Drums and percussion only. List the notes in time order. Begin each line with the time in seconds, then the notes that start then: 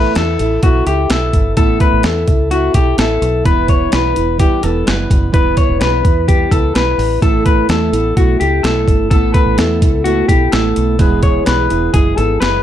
0.15 snare, closed hi-hat
0.39 closed hi-hat
0.63 kick, closed hi-hat
0.87 closed hi-hat
1.10 snare, closed hi-hat
1.33 kick, closed hi-hat
1.57 kick, closed hi-hat
1.80 kick, closed hi-hat
2.03 snare, closed hi-hat
2.28 kick, closed hi-hat
2.51 closed hi-hat
2.74 kick, closed hi-hat
2.98 snare, closed hi-hat
3.22 closed hi-hat
3.45 kick, closed hi-hat
3.68 kick, closed hi-hat
3.92 snare, closed hi-hat
4.16 closed hi-hat
4.39 kick, closed hi-hat
4.63 closed hi-hat
4.87 snare, closed hi-hat
5.10 kick, closed hi-hat
5.34 kick, closed hi-hat
5.57 kick, closed hi-hat
5.81 snare, closed hi-hat
6.05 kick, closed hi-hat
6.28 kick, closed hi-hat
6.52 kick, closed hi-hat
6.75 snare, closed hi-hat
6.99 open hi-hat
7.22 kick, closed hi-hat
7.46 kick, closed hi-hat
7.69 snare, closed hi-hat
7.93 closed hi-hat
8.17 kick, closed hi-hat
8.41 closed hi-hat
8.64 snare, closed hi-hat
8.88 kick, closed hi-hat
9.11 kick, closed hi-hat
9.34 kick, closed hi-hat
9.58 snare, closed hi-hat
9.82 kick, closed hi-hat
10.06 closed hi-hat
10.29 kick, closed hi-hat
10.52 snare, closed hi-hat
10.76 closed hi-hat
10.99 kick, closed hi-hat
11.23 kick, closed hi-hat
11.46 snare, closed hi-hat
11.70 closed hi-hat
11.94 kick, closed hi-hat
12.18 closed hi-hat
12.42 snare, closed hi-hat